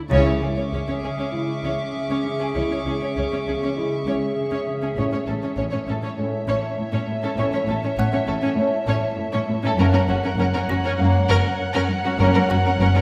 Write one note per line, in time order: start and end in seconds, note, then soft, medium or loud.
0.00 0.11 E4 medium
0.00 0.12 A4 medium
0.10 0.25 C#2 medium
0.10 0.29 C#3 medium
0.10 0.99 C#3 medium
0.10 0.40 G#3 medium
0.10 0.25 C#4 medium
0.10 4.94 C#4 medium
0.10 0.40 E4 medium
0.10 4.94 G#4 medium
0.10 0.26 C#5 medium
0.10 4.93 E5 medium
0.10 4.94 E5 medium
0.10 4.63 C#6 soft
0.10 4.03 D6 soft
0.10 1.90 A6 soft
0.26 0.33 C#2 soft
0.26 0.33 C#4 soft
0.26 0.33 C#5 soft
0.41 0.47 C#2 soft
0.41 0.48 C#2 soft
0.41 0.60 C#3 soft
0.41 0.48 C#4 soft
0.41 0.48 G#4 soft
0.57 0.63 C#2 soft
0.57 0.63 C#4 soft
0.57 0.63 C#5 soft
0.71 0.78 C#2 medium
0.71 0.91 C#3 soft
0.71 0.79 C#4 medium
0.71 0.79 C#5 soft
0.87 0.94 C#2 soft
0.87 0.94 C#4 soft
0.87 0.94 C#5 soft
1.02 1.08 C#2 soft
1.02 1.09 C#2 soft
1.02 1.22 C#3 soft
1.02 1.10 C#4 soft
1.02 1.10 G#4 soft
1.18 1.24 C#2 medium
1.18 1.25 C#4 medium
1.18 1.25 C#5 medium
1.32 1.52 C#3 medium
1.32 1.54 G#3 medium
1.32 1.54 E4 medium
1.63 1.69 C#2 medium
1.63 1.70 C#2 medium
1.63 1.83 C#3 soft
1.63 1.70 C#4 soft
1.63 1.71 C#5 medium
1.95 2.13 C#3 soft
2.09 2.16 C#2 medium
2.09 2.16 C#4 medium
2.09 2.16 C#5 medium
2.26 2.44 C#3 medium
2.40 2.47 C#2 soft
2.40 2.46 C#4 soft
2.40 2.46 G#4 medium
2.55 2.61 C#2 medium
2.55 2.62 C#2 medium
2.55 2.75 C#3 medium
2.55 2.77 G#3 medium
2.55 2.61 C#4 soft
2.55 2.77 E4 medium
2.55 2.61 C#5 medium
2.71 2.78 C#2 soft
2.71 2.77 C#4 soft
2.71 2.78 C#5 soft
2.85 2.92 C#2 soft
2.85 2.93 C#2 soft
2.85 3.05 C#3 soft
2.85 2.92 C#4 soft
2.85 2.93 G#4 soft
3.01 3.08 C#2 soft
3.01 3.08 C#4 soft
3.01 3.08 C#5 soft
3.16 3.22 C#2 medium
3.16 3.23 C#2 medium
3.16 3.36 C#3 soft
3.16 3.23 C#4 medium
3.16 3.24 C#5 soft
3.32 3.38 C#2 soft
3.32 3.38 C#4 soft
3.32 3.39 C#5 soft
3.46 3.53 C#2 soft
3.46 3.66 C#3 soft
3.46 3.54 C#4 medium
3.46 3.53 G#4 soft
3.62 3.69 C#2 medium
3.62 3.69 C#4 medium
3.62 3.68 C#5 medium
3.76 3.96 C#3 medium
3.76 3.98 G#3 medium
3.76 3.98 E4 medium
4.06 4.13 C#2 medium
4.06 4.14 C#2 medium
4.06 4.26 C#3 soft
4.06 4.13 C#4 medium
4.06 4.13 C#5 medium
4.37 4.55 C#3 medium
4.51 4.59 C#2 medium
4.51 4.58 C#4 medium
4.51 4.59 C#5 medium
4.67 4.85 C#3 medium
4.82 4.88 C#2 medium
4.82 4.88 C#4 medium
4.82 4.89 G#4 soft
4.96 5.03 A1 medium
4.96 5.16 A2 medium
4.96 5.04 A2 medium
4.96 5.19 A3 medium
4.96 5.03 C#4 medium
4.96 5.19 C#4 medium
4.96 9.75 C#5 medium
4.96 5.04 C#5 medium
4.96 9.74 E5 medium
4.96 9.75 E5 medium
4.96 9.79 A5 medium
5.12 5.18 A2 soft
5.12 5.18 C#4 soft
5.12 5.20 C#5 soft
5.27 5.33 A1 medium
5.27 5.34 A2 soft
5.27 5.47 A2 soft
5.27 5.33 C#4 soft
5.27 5.34 A4 soft
5.43 5.49 A2 soft
5.43 5.49 C#4 soft
5.43 5.49 C#5 soft
5.57 5.63 A1 medium
5.57 5.76 A2 medium
5.57 5.65 A2 medium
5.57 5.64 C#4 medium
5.57 5.63 C#5 medium
5.72 5.79 A2 soft
5.72 5.78 C#4 soft
5.72 5.78 C#5 soft
5.87 5.93 A1 soft
5.87 6.06 A2 medium
5.87 5.94 A2 soft
5.87 5.94 C#4 soft
5.87 5.95 A4 soft
6.03 6.09 A2 medium
6.03 6.09 C#4 medium
6.03 6.10 C#5 medium
6.18 6.36 A2 medium
6.18 6.39 A3 medium
6.18 6.40 C#4 medium
6.47 6.53 A1 medium
6.47 6.54 A2 medium
6.47 6.66 A2 medium
6.47 6.53 C#4 medium
6.47 6.54 C#5 medium
6.77 6.95 A2 medium
6.92 6.99 A2 medium
6.92 6.99 C#4 medium
6.92 6.99 C#5 medium
7.08 7.26 A2 medium
7.23 7.29 A2 medium
7.23 7.29 C#4 medium
7.23 7.30 A4 medium
7.37 7.43 A1 medium
7.37 7.56 A2 medium
7.37 7.45 A2 medium
7.37 7.59 A3 medium
7.37 7.44 C#4 medium
7.37 7.59 C#4 medium
7.37 7.45 C#5 medium
7.52 7.60 A2 medium
7.52 7.58 C#4 medium
7.52 7.60 C#5 soft
7.67 7.73 A1 medium
7.67 7.86 A2 medium
7.67 7.75 A2 medium
7.67 7.74 C#4 soft
7.67 7.75 A4 medium
7.83 7.90 A2 medium
7.83 7.89 C#4 soft
7.83 7.90 C#5 medium
7.97 8.03 A1 medium
7.97 8.15 A2 medium
7.97 8.05 A2 medium
7.97 8.04 C#4 medium
7.97 8.04 C#5 medium
7.97 9.75 F#5 soft
7.97 9.75 F#6 medium
8.12 8.20 A2 medium
8.12 8.18 C#4 medium
8.12 8.20 C#5 medium
8.27 8.33 A1 medium
8.27 8.46 A2 medium
8.27 8.34 A2 medium
8.27 8.33 C#4 medium
8.27 8.34 A4 medium
8.41 8.49 A2 medium
8.41 8.47 C#4 medium
8.41 8.49 C#5 medium
8.57 8.75 A2 medium
8.57 8.79 A3 medium
8.57 8.79 C#4 medium
8.87 8.93 A1 medium
8.87 9.05 A2 medium
8.87 8.94 A2 medium
8.87 8.93 C#4 medium
8.87 8.94 C#5 medium
9.17 9.35 A2 medium
9.33 9.40 A2 medium
9.33 9.39 C#4 medium
9.33 9.39 C#5 medium
9.47 9.66 A2 medium
9.63 9.70 A2 medium
9.63 9.69 C#4 medium
9.63 9.71 A4 medium
9.78 9.84 F#1 medium
9.78 9.96 F#2 loud
9.78 9.85 F#2 medium
9.78 10.01 A#3 medium
9.78 9.84 C#4 medium
9.78 10.01 C#4 medium
9.78 9.85 A#4 medium
9.78 13.01 C#5 medium
9.78 13.01 F#5 medium
9.78 13.01 A#5 medium
9.93 10.00 F#2 medium
9.93 9.99 C#4 medium
9.93 10.00 A#4 medium
10.08 10.15 F#1 medium
10.08 10.27 F#2 medium
10.08 10.15 F#2 medium
10.08 10.14 C#4 medium
10.08 10.15 F#4 medium
10.23 10.30 F#2 medium
10.23 10.29 C#4 medium
10.23 10.31 A#4 medium
10.38 10.45 F#1 loud
10.38 10.57 F#2 medium
10.38 10.45 F#2 medium
10.38 10.44 C#4 medium
10.38 10.45 A#4 medium
10.53 10.61 F#2 medium
10.53 10.60 C#4 medium
10.53 10.59 A#4 medium
10.67 10.75 F#1 medium
10.67 10.86 F#2 medium
10.67 10.76 F#2 medium
10.67 10.75 C#4 medium
10.67 10.75 F#4 medium
10.67 12.47 A#6 medium
10.83 10.91 F#2 loud
10.83 10.91 C#4 loud
10.83 10.90 A#4 medium
10.99 11.17 F#2 medium
10.99 11.20 A#3 medium
10.99 11.20 C#4 medium
11.29 11.35 F#1 medium
11.29 11.47 F#2 medium
11.29 11.36 F#2 loud
11.29 11.36 C#4 medium
11.29 11.35 A#4 loud
11.60 11.78 F#2 medium
11.73 11.81 F#2 loud
11.73 11.81 C#4 medium
11.73 11.80 A#4 medium
11.90 12.08 F#2 medium
12.04 12.11 F#2 medium
12.04 12.12 C#4 medium
12.04 12.11 F#4 medium
12.19 12.26 F#1 loud
12.19 12.38 F#2 loud
12.19 12.27 F#2 loud
12.19 12.41 A#3 medium
12.19 12.41 C#4 medium
12.19 12.27 C#4 medium
12.19 12.25 A#4 loud
12.34 12.42 F#2 medium
12.34 12.41 C#4 medium
12.34 12.40 A#4 medium
12.48 12.56 F#1 medium
12.48 12.68 F#2 medium
12.48 12.57 F#2 medium
12.48 12.56 C#4 medium
12.48 12.55 F#4 medium
12.48 13.01 F#5 medium
12.48 13.01 F#6 medium
12.65 12.72 F#2 medium
12.65 12.72 C#4 medium
12.65 12.71 A#4 medium
12.80 12.86 F#1 loud
12.80 12.87 F#2 loud
12.80 12.99 F#2 medium
12.80 12.86 C#4 medium
12.80 12.87 A#4 medium
12.95 13.01 F#2 medium
12.95 13.01 C#4 medium
12.95 13.01 A#4 medium